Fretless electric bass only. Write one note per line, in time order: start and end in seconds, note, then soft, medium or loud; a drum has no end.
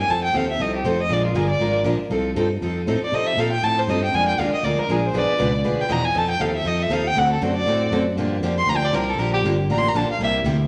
0.08 0.33 F2 medium
0.33 0.58 D#2 medium
0.58 0.84 C2 medium
0.84 1.09 F1 medium
1.09 1.33 A#1 medium
1.34 1.59 G1 medium
1.59 1.84 G#1 medium
1.85 1.98 A#1 medium
1.99 muted fretless electric bass stroke soft
2.10 2.34 C2 medium
2.35 2.61 G2 medium
2.61 2.86 F2 medium
2.87 3.00 A2 medium
3.01 muted fretless electric bass stroke soft
3.12 3.36 C3 medium
3.37 3.62 A#2 medium
3.63 3.87 A2 medium
3.87 4.12 G2 medium
4.13 4.37 F2 medium
4.38 4.51 D#2 medium
4.52 muted fretless electric bass stroke soft
4.63 4.77 D2 medium
4.79 muted fretless electric bass stroke soft
4.89 5.13 A#1 medium
5.14 5.28 B1 medium
5.40 5.64 C#2 medium
5.65 5.78 D2 medium
5.79 muted fretless electric bass stroke soft
5.89 6.14 E2 medium
6.15 6.39 F2 medium
6.40 6.64 D#2 loud
6.64 6.89 F2 medium
6.89 7.15 D#2 medium
7.16 7.41 D2 medium
7.41 7.65 F#2 medium
7.65 7.90 A2 medium
7.91 8.15 F#2 medium
8.16 8.40 G2 medium
8.41 8.66 F2 loud
8.66 8.91 D2 medium
8.92 9.17 C2 loud
9.17 9.42 A#1 medium
9.43 9.68 G1 medium
9.69 9.93 A1 medium
9.94 10.08 A#1 loud
10.19 10.43 C2 medium
10.43 10.67 D2 loud